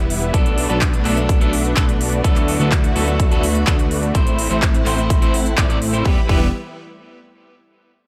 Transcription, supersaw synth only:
0.00 0.31 G3 medium
0.00 0.31 B3 medium
0.00 0.31 E4 medium
0.00 0.31 B4 medium
0.00 0.31 E5 loud
0.34 0.67 A3 medium
0.34 0.67 D4 medium
0.34 0.67 F#4 medium
0.34 0.67 B4 medium
0.34 0.67 D5 loud
0.70 1.02 A3 medium
0.70 1.02 D4 medium
0.70 1.02 F#4 medium
0.70 1.02 B4 medium
0.70 1.02 D5 loud
1.05 1.17 A3 medium
1.05 1.17 D4 medium
1.05 1.17 F#4 medium
1.05 1.17 B4 medium
1.05 1.17 E5 loud
1.41 1.74 A3 medium
1.41 1.74 D4 medium
1.41 1.74 F#4 medium
1.41 1.74 B4 medium
1.41 1.74 E5 loud
1.77 2.22 A3 medium
2.24 2.57 D4 medium
2.24 2.57 F#4 medium
2.24 2.57 B4 medium
2.60 2.93 A3 medium
2.60 2.93 D4 medium
2.60 2.93 F#4 medium
2.60 2.93 B4 medium
2.60 2.93 D5 loud
2.96 3.08 A3 loud
2.96 3.08 D4 medium
2.96 3.08 F#4 medium
2.96 3.08 B4 medium
2.96 3.08 E5 loud
3.31 3.64 A3 medium
3.31 3.64 D4 medium
3.31 3.64 F#4 medium
3.31 3.64 B4 medium
3.31 3.64 E5 medium
3.67 4.12 A3 medium
3.67 4.12 D4 medium
3.67 4.12 F#4 medium
3.67 4.12 D5 loud
4.15 4.48 A3 medium
4.15 4.48 C4 medium
4.15 4.48 E4 medium
4.15 4.48 C5 medium
4.15 4.48 E5 loud
4.51 4.83 A3 medium
4.51 4.83 C4 medium
4.51 4.83 E4 medium
4.51 4.83 C5 medium
4.51 4.83 E5 medium
4.86 4.98 A3 medium
4.86 4.98 C4 medium
4.86 4.98 E4 medium
4.86 4.98 C5 medium
4.86 4.98 F#5 loud
5.22 5.55 A3 medium
5.22 5.55 C4 medium
5.22 5.55 E4 medium
5.22 5.55 C5 medium
5.22 5.55 F#5 medium
5.58 6.02 A3 medium
5.58 6.02 C4 medium
6.05 6.19 G3 medium
6.05 6.19 B3 medium
6.05 6.19 E4 medium
6.05 6.19 B4 medium
6.05 6.19 E5 loud
6.29 6.47 G3 medium
6.29 6.47 B3 medium
6.29 6.47 E4 medium
6.29 6.47 B4 medium
6.29 6.47 E5 loud

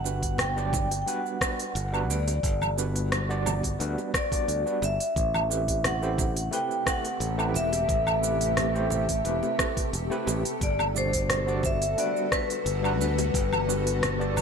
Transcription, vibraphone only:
0.00 0.35 F#5 loud
0.40 1.01 G5 loud
1.02 1.08 G5 medium
1.07 2.13 F#5 loud
2.11 2.74 D5 medium
4.16 4.79 D5 medium
4.84 5.82 E5 medium
5.86 6.49 F#5 loud
6.54 6.88 G5 loud
6.88 7.58 F#5 loud
7.56 9.56 E5 loud
10.63 10.78 D5 loud
10.98 11.67 C5 loud
11.65 12.00 E5 loud
12.00 12.34 D5 loud
12.34 13.00 B4 loud
13.01 14.42 B4 medium

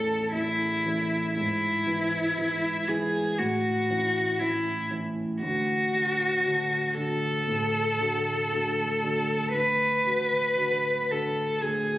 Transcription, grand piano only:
0.00 1.38 E2 soft
0.00 0.35 E3 soft
0.00 0.34 A3 soft
0.00 0.35 C#4 soft
0.34 0.81 E3 soft
0.34 0.81 A3 soft
0.34 0.81 C#4 soft
0.85 1.32 E3 soft
0.85 1.32 A3 soft
0.85 1.33 C#4 soft
1.37 1.86 G#2 soft
1.86 2.33 E3 soft
1.86 2.34 B3 soft
1.86 2.34 E4 soft
2.38 2.84 E3 soft
2.38 2.85 B3 soft
2.38 2.85 E4 soft
2.88 3.34 E3 soft
2.88 3.35 B3 soft
2.88 3.35 E4 soft
3.39 3.88 A2 medium
3.90 4.36 E3 soft
3.90 4.36 C#4 soft
3.90 4.37 E4 soft
4.41 4.87 E3 soft
4.41 4.87 C#4 soft
4.41 4.88 E4 soft
4.91 5.38 E3 soft
4.91 5.38 C#4 soft
4.91 5.38 E4 soft
5.43 5.92 D2 medium
5.94 6.41 D3 soft
5.94 6.41 D4 soft
5.94 6.41 F#4 soft
6.46 6.93 D3 soft
6.46 6.92 D4 soft
6.46 6.93 F#4 soft
6.96 7.44 D3 soft
6.96 7.44 D4 soft
6.96 7.44 F#4 soft
7.48 7.98 A2 medium
8.00 8.47 D3 soft
8.00 8.47 D4 soft
8.00 8.48 F#4 soft
8.53 8.99 D3 soft
8.53 8.99 D4 soft
8.53 8.99 F#4 soft
9.03 9.50 D3 soft
9.03 9.50 D4 soft
9.03 9.50 F#4 soft
9.54 10.04 D2 soft
10.05 10.53 D3 soft
10.05 10.53 D4 soft
10.05 10.54 F#4 soft
10.56 11.05 D3 soft
10.56 11.05 D4 soft
10.56 11.05 F#4 soft
11.10 11.58 D3 soft
11.10 11.58 D4 soft
11.10 11.58 F#4 soft
11.62 11.98 D2 soft

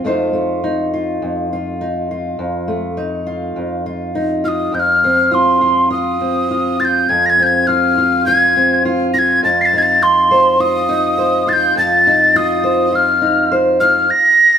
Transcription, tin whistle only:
4.45 4.76 D#6 medium
4.45 4.49 F6 medium
4.75 4.80 G6 medium
4.79 5.36 F6 medium
5.34 5.91 C6 medium
5.92 6.81 D#6 medium
6.80 6.86 A6 medium
6.85 7.10 G6 medium
7.09 7.27 G#6 medium
7.26 7.44 G#6 medium
7.26 7.31 A#6 medium
7.43 7.48 G6 medium
7.43 7.69 G#6 medium
7.67 8.25 F6 medium
8.26 8.83 G#6 medium
9.14 9.20 A#6 medium
9.19 9.41 G#6 medium
9.44 9.62 A6 loud
9.61 9.66 C7 medium
9.65 9.79 A6 loud
9.78 9.83 G#6 medium
9.82 10.04 A6 loud
10.03 10.62 C6 medium
10.61 11.50 D#6 loud
11.49 11.54 A6 medium
11.53 11.78 G6 medium
11.78 12.38 A6 medium
12.36 12.97 D#6 medium
12.95 13.55 F6 medium
13.80 14.12 F6 medium
14.10 14.59 A#6 medium

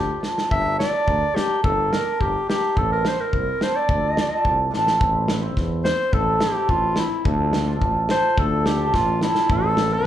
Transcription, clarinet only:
0.00 0.22 G4 medium
0.51 0.77 E5 medium
0.79 1.37 D5 medium
1.35 1.63 G4 loud
1.63 1.94 A4 medium
1.92 2.22 A#4 medium
2.21 2.48 G4 medium
2.49 2.80 G4 medium
2.78 2.91 A4 medium
2.92 3.09 A#4 medium
3.08 3.22 C5 medium
3.21 3.64 A#4 medium
3.63 3.78 C5 medium
3.76 4.74 D5 medium
5.84 6.15 C5 loud
6.13 6.44 A4 medium
6.43 6.72 G4 medium
6.70 7.01 F4 medium
7.00 7.26 E4 medium
8.11 8.40 C5 loud
8.39 8.67 A4 medium
8.66 8.96 G4 medium
8.95 9.22 F4 medium
9.22 9.53 E4 medium
9.52 9.95 A4 loud
9.94 10.06 C5 loud

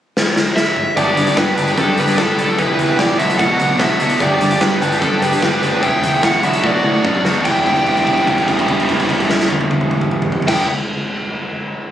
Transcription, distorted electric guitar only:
0.97 1.76 G3 medium
0.97 1.59 B3 medium
0.97 1.57 D4 medium
0.97 1.56 G4 loud
1.57 1.78 B3 medium
1.57 1.78 D4 medium
1.57 1.78 G4 medium
1.77 2.16 G3 medium
1.77 1.99 B3 medium
1.77 1.98 D4 medium
1.77 1.96 G4 medium
1.97 2.17 B3 medium
1.97 2.18 D4 medium
1.97 2.18 G4 medium
2.17 2.57 G3 medium
2.17 2.39 B3 medium
2.17 2.38 D4 medium
2.17 2.37 G4 medium
2.38 2.58 B3 medium
2.38 2.58 D4 medium
2.38 2.57 G4 medium
2.58 3.18 E3 medium
2.58 3.20 B3 medium
2.58 3.18 E4 medium
2.58 3.18 G4 medium
3.19 3.61 B2 medium
3.19 3.38 F#3 medium
3.19 3.40 B3 medium
3.19 3.40 D4 medium
3.19 3.40 F#4 medium
3.39 3.79 F#3 medium
3.39 3.61 B3 medium
3.39 3.60 D4 medium
3.39 3.58 F#4 medium
3.60 3.81 B3 medium
3.60 3.80 D4 medium
3.60 3.81 F#4 medium
3.80 4.19 B2 medium
3.80 4.20 F#3 medium
3.80 4.02 B3 medium
3.80 4.00 D4 loud
3.80 3.99 F#4 medium
4.00 4.21 B3 medium
4.00 4.20 D4 medium
4.00 4.19 F#4 medium
4.21 5.01 G3 medium
4.21 4.83 B3 medium
4.21 4.81 D4 loud
4.21 4.80 G4 loud
4.81 5.02 B3 medium
4.81 5.02 D4 medium
4.81 5.03 G4 medium
5.02 5.41 G3 medium
5.02 5.25 B3 medium
5.02 5.23 D4 medium
5.02 5.22 G4 medium
5.23 5.43 B3 medium
5.23 5.43 D4 medium
5.23 5.43 G4 medium
5.42 5.82 G3 medium
5.42 5.64 B3 medium
5.42 5.62 D4 medium
5.42 5.61 G4 loud
5.63 5.83 B3 medium
5.63 5.82 D4 medium
5.63 5.82 G4 medium
5.83 6.43 E3 loud
5.83 6.43 B3 medium
5.83 6.44 E4 loud
5.83 6.43 G4 loud
6.44 6.86 B2 medium
6.44 6.62 F#3 medium
6.44 6.63 B3 medium
6.44 6.64 D4 medium
6.44 6.65 F#4 medium
6.63 7.04 F#3 medium
6.63 6.85 B3 medium
6.63 6.84 D4 medium
6.63 6.83 F#4 medium
6.84 7.04 B3 medium
6.84 7.04 D4 medium
6.84 7.05 F#4 medium
7.04 7.44 B2 medium
7.04 7.44 F#3 loud
7.04 7.26 B3 medium
7.04 7.25 D4 loud
7.04 7.24 F#4 loud
7.25 7.46 B3 medium
7.25 7.45 D4 medium
7.25 7.44 F#4 medium
7.45 10.46 E3 medium
7.45 10.48 G3 medium
7.45 10.49 B3 loud
7.45 10.51 E4 medium
10.47 10.65 E3 medium
10.47 10.66 G3 medium
10.47 10.67 B3 medium
10.51 10.68 E4 medium

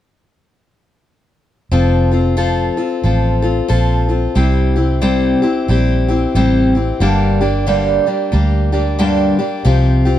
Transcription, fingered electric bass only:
1.72 2.69 F1 medium
3.04 3.60 A1 medium
3.70 4.26 A#1 medium
4.36 5.34 C2 medium
5.69 6.25 A#1 medium
6.35 6.91 A1 medium
7.00 7.98 G1 medium
8.33 9.31 D2 medium
9.65 10.19 C2 medium

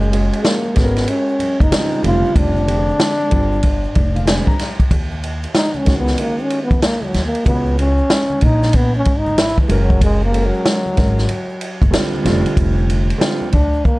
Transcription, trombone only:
0.00 0.46 G#3 medium
0.45 0.79 A#3 medium
0.77 1.11 B3 medium
1.09 1.63 C#4 medium
1.62 2.04 D#4 medium
2.05 2.39 F4 medium
2.38 4.28 D4 loud
5.56 5.79 D#4 medium
5.77 5.98 C#4 medium
5.98 6.22 B3 medium
6.20 6.43 A#3 medium
6.42 6.62 C#4 medium
6.63 6.82 B3 medium
6.84 7.06 A#3 medium
7.05 7.25 F#3 medium
7.25 7.45 A#3 medium
7.47 7.76 B3 loud
7.80 8.45 C#4 loud
8.43 8.77 D#4 loud
8.75 8.96 B3 medium
8.97 9.20 C#4 loud
9.18 9.41 D#4 loud
9.39 9.60 E4 loud
9.60 9.84 E3 medium
9.82 10.02 F#3 medium
10.03 10.22 G#3 loud
10.24 10.47 A#3 medium
10.46 12.05 F#3 medium
13.53 13.87 D4 medium
13.85 13.99 A#3 medium

